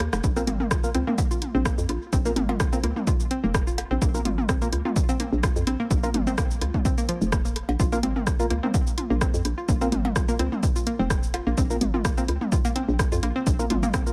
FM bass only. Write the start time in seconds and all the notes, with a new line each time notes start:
0.00 D#2
0.13 F1
0.24 A#1
0.47 G#1
0.95 C#2
1.55 A#1
1.78 F2
1.89 A#1
2.13 A#1
2.36 G#1
2.83 C#2
3.44 F1
3.91 A#1
4.02 A#1
4.25 G#1
4.73 C#2
5.33 A#1
5.56 F2
5.67 A#1
5.91 A#1
6.14 G#1
6.61 C#2
7.22 F1
7.69 A#1
7.80 A#1
8.03 G#1
8.50 C#2
9.10 A#1
9.34 F2
9.45 A#1
9.69 A#1
9.92 G#1
10.39 C#2
10.99 F1
11.47 A#1
11.58 A#1
11.81 G#1
12.29 C#2
12.89 A#1
13.12 F2
13.23 A#1
13.47 A#1
13.70 G#1